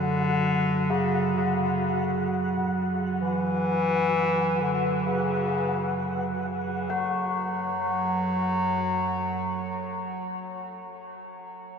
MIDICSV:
0, 0, Header, 1, 5, 480
1, 0, Start_track
1, 0, Tempo, 500000
1, 11317, End_track
2, 0, Start_track
2, 0, Title_t, "Synth texture"
2, 0, Program_c, 0, 99
2, 0, Note_on_c, 0, 78, 73
2, 6645, Note_off_c, 0, 78, 0
2, 11317, End_track
3, 0, Start_track
3, 0, Title_t, "Tubular bells"
3, 0, Program_c, 1, 14
3, 0, Control_c, 1, 64, 127
3, 6624, Note_on_c, 1, 66, 52
3, 6638, Control_c, 1, 64, 0
3, 6821, Control_c, 1, 64, 127
3, 10478, Note_off_c, 1, 66, 0
3, 11317, End_track
4, 0, Start_track
4, 0, Title_t, "Bass clarinet"
4, 0, Program_c, 2, 71
4, 0, Note_on_c, 2, 50, 108
4, 870, Note_on_c, 2, 49, 92
4, 885, Note_off_c, 2, 50, 0
4, 1310, Note_off_c, 2, 49, 0
4, 1318, Note_on_c, 2, 49, 69
4, 2603, Note_off_c, 2, 49, 0
4, 3085, Note_on_c, 2, 52, 118
4, 4427, Note_on_c, 2, 50, 85
4, 4442, Note_off_c, 2, 52, 0
4, 4870, Note_on_c, 2, 49, 73
4, 4885, Note_off_c, 2, 50, 0
4, 6190, Note_off_c, 2, 49, 0
4, 6617, Note_on_c, 2, 54, 94
4, 10472, Note_off_c, 2, 54, 0
4, 11317, End_track
5, 0, Start_track
5, 0, Title_t, "Synth drone"
5, 0, Program_c, 3, 95
5, 0, Note_on_c, 3, 42, 62
5, 0, Note_on_c, 3, 54, 68
5, 6600, Note_off_c, 3, 42, 0
5, 6603, Note_off_c, 3, 54, 0
5, 6611, Note_on_c, 3, 42, 60
5, 6615, Note_on_c, 3, 54, 67
5, 10466, Note_off_c, 3, 42, 0
5, 10469, Note_off_c, 3, 54, 0
5, 11317, End_track
0, 0, End_of_file